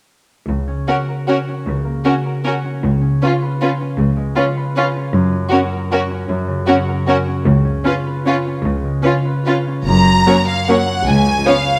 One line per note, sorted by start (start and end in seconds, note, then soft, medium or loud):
0.48 0.80 C#2 soft
0.48 1.66 C#3 soft
0.68 1.47 C#4 soft
0.88 0.96 C#4 soft
0.88 0.96 F#4 soft
0.88 1.28 F#4 soft
0.88 0.96 A#4 soft
1.09 2.24 A#4 soft
1.29 1.37 C#4 soft
1.29 1.37 F#4 soft
1.29 2.04 F#4 soft
1.29 1.37 A#4 soft
1.49 2.64 C#4 soft
1.67 1.97 C#2 soft
1.67 2.82 C#3 soft
1.85 2.84 A#3 soft
2.05 2.13 C#4 soft
2.05 2.13 F#4 soft
2.05 2.44 F#4 soft
2.05 2.13 A#4 soft
2.25 2.85 A#4 soft
2.45 2.53 C#4 soft
2.45 2.85 F#4 soft
2.45 2.54 F#4 soft
2.45 2.53 A#4 soft
2.65 3.00 C#4 soft
2.83 3.14 C#2 soft
2.83 3.97 C#3 soft
3.01 3.80 C#4 soft
3.22 3.30 C#4 soft
3.22 3.60 F4 soft
3.22 3.33 F4 soft
3.22 3.30 B4 soft
3.42 4.56 B4 soft
3.61 3.70 C#4 soft
3.61 4.36 F4 soft
3.61 3.70 F4 soft
3.61 3.70 B4 soft
3.81 4.95 C#4 soft
3.98 4.28 C#2 soft
3.98 5.15 C#3 soft
4.17 5.15 G#3 soft
4.36 4.44 C#4 soft
4.36 4.45 F4 soft
4.36 4.76 F4 soft
4.36 4.44 B4 soft
4.57 5.15 B4 soft
4.76 4.85 C#4 soft
4.76 5.15 F4 soft
4.76 4.86 F4 soft
4.76 4.84 B4 soft
4.96 5.31 C#4 soft
5.13 5.43 F#2 soft
5.13 6.28 F#2 soft
5.33 6.10 C#4 soft
5.50 5.60 C#4 soft
5.50 5.58 F#4 soft
5.50 5.91 F#4 soft
5.50 5.59 A#4 soft
5.72 6.87 A#4 soft
5.92 6.00 C#4 soft
5.92 6.66 F#4 soft
5.92 6.01 F#4 soft
5.92 6.00 A#4 soft
6.11 7.27 C#4 soft
6.29 7.48 F#2 soft
6.29 6.59 F#2 soft
6.48 7.45 C#3 soft
6.67 6.76 C#4 soft
6.67 6.75 F#4 soft
6.67 7.07 F#4 soft
6.67 6.76 A#4 soft
6.88 7.48 A#4 soft
7.08 7.16 C#4 soft
7.08 7.16 F#4 soft
7.08 7.48 F#4 soft
7.08 7.17 A#4 soft
7.28 7.64 C#4 soft
7.46 7.77 C#2 medium
7.46 8.64 C#3 soft
7.65 8.46 C#4 soft
7.84 7.92 C#4 soft
7.84 8.25 F4 soft
7.84 7.94 F4 soft
7.84 7.94 B4 soft
8.06 9.24 B4 soft
8.26 8.34 C#4 soft
8.26 9.03 F4 soft
8.26 8.36 F4 soft
8.26 8.35 B4 soft
8.47 9.66 C#4 soft
8.64 8.95 C#2 soft
8.64 9.89 C#3 soft
8.84 9.89 G#3 soft
9.03 9.11 C#4 soft
9.03 9.45 F4 soft
9.03 9.14 F4 soft
9.03 9.11 B4 soft
9.25 9.89 B4 soft
9.46 9.55 C#4 soft
9.46 9.89 F4 soft
9.46 9.56 F4 soft
9.46 9.54 B4 soft
9.67 10.05 C#4 soft
9.86 10.18 F#1 soft
9.86 10.20 F#2 soft
9.86 11.08 F#2 soft
9.86 10.44 A#5 soft
10.07 11.24 C#4 soft
10.27 10.35 F#3 soft
10.27 10.35 A#3 soft
10.27 10.36 C#4 soft
10.27 11.08 A#4 soft
10.27 10.36 C#5 soft
10.47 10.86 C#5 soft
10.47 10.68 F5 soft
10.67 10.77 F#3 soft
10.67 10.76 A#3 soft
10.67 10.78 C#4 soft
10.67 10.78 C#5 soft
10.67 11.08 F#5 soft
10.67 11.06 F#5 soft
10.87 11.65 C#5 soft
11.06 11.37 C#2 soft
11.06 11.39 C#2 soft
11.06 11.79 C#3 soft
11.06 11.46 G#5 soft
11.25 11.79 C#4 soft
11.46 11.54 F3 soft
11.46 11.54 B3 soft
11.46 11.55 C#4 soft
11.46 11.79 B4 soft
11.46 11.55 C#5 soft
11.46 11.79 F5 soft
11.66 11.79 C#5 soft